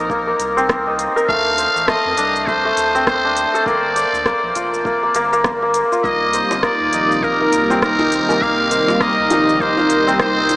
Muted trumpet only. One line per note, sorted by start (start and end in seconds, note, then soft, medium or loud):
1.29 1.90 F5 loud
1.88 2.49 D#5 loud
2.47 3.06 C5 loud
3.07 3.62 C5 medium
3.66 4.81 D5 loud
6.04 6.66 D#5 loud
6.64 7.25 D5 loud
7.24 7.82 A#4 loud
7.83 8.44 A#4 loud
8.42 9.03 F5 loud
9.01 9.63 D#5 loud
9.61 10.19 C5 loud
10.20 10.56 C5 loud